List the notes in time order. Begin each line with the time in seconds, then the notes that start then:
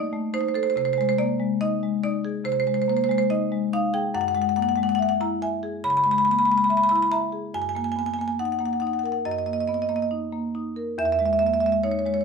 Already playing: D#4 D5
0.13 A3
0.34 D#4 C5
0.41 C5
0.48 C5
0.54 A4 C5
0.63 C5
0.70 C5
0.76 C3 C5
0.85 C5
0.93 C5
0.98 G#3 C5
1.09 C5
1.18 A#3 D5
1.40 G#3
1.61 D#4 D#5
1.83 G#3
2.04 D#4 D5
2.25 G#4
2.45 C3 C5
2.52 C5
2.60 C5
2.67 G#3 C5
2.74 C5
2.82 C5
2.88 A#3 C5
2.97 C5
3.04 C5
3.09 G#3 C5
3.18 C5
3.30 D#4 D#5
3.52 G#3
3.73 D#4 F5
3.94 G#4 G5
4.14 F#2 F#5
4.21 F#5
4.28 F#5
4.35 G#3 F#5
4.42 F#5
4.49 F#5
4.56 A#3 F#5
4.62 F#5
4.69 F#5
4.76 G#3 F#5
4.83 F#5
4.89 F#5
4.95 E5 F#5
5.02 F#5
5.09 F#5
5.20 E4 A#5
5.42 E5 G#5
5.63 G#4
5.84 C#3 B5
5.90 B5
5.97 B5
6.04 G#3 B5
6.11 B5
6.18 B5
6.25 A#3 B5
6.31 B5
6.39 B5
6.45 G#3 B5
6.52 B5
6.58 B5
6.64 B5
6.69 E5 B5
6.77 B5
6.84 B5
6.89 E4 B5
6.96 B5
7.02 B5
7.11 E5 A#5
7.32 G#4
7.54 F#2 G#5
7.62 G#5
7.69 G#5
7.75 A#3 G#5
7.84 G#5
7.92 G#5
7.96 B3 G#5
8.06 G#5
8.14 G#5
8.19 A#3 G#5
8.28 G#5
8.39 D#4 F#5
8.45 F#5
8.52 F#5
8.59 A#3 F#5
8.66 F#5
8.73 F#5
8.80 D#4 F#5
8.87 F#5
8.93 F#5
8.99 F#5
9.03 A#4 F#5
9.12 F#5
9.25 F#2 D#5
9.32 D#5
9.39 D#5
9.46 A#3 D#5
9.53 D#5
9.60 D#5
9.68 B3 D#5
9.74 D#5
9.82 D#5
9.89 A#3 D#5
9.96 D#5
10.02 D#5
10.11 D#4
10.32 A#3
10.55 D#4
10.76 A#4
10.98 E2 E5
11.05 E5
11.12 E5
11.19 G#3 E5
11.26 E5
11.33 E5
11.39 A#3 E5
11.46 E5
11.54 E5
11.60 G#3 E5
11.66 E5
11.72 E5
11.84 D#4 C#5
11.91 C#5
11.99 C#5
12.06 G#3 C#5
12.14 C#5
12.21 C#5